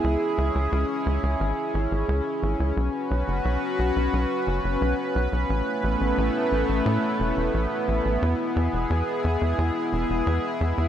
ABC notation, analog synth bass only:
X:1
M:4/4
L:1/16
Q:1/4=88
K:C#m
V:1 name="Analog synth bass" clef=bass
C,, z C,, C,, C,, z C,, C,, G,,, z G,,, G,,, C,, z G,,, C,, | B,,, z B,,, F,,, B,,, z B,,, B,,, B,,, z F,,, F,,, B,,, z B,,, B,,, | A,,, z A,,, A,,, A,,, z A,,, A,,, A,, z E,,, E,,, A,,, z A,,, A,,, | E,, z E,, E,,, E,, z E,, E,, E,, z E,,, E,,, E,, z E,, E,, |]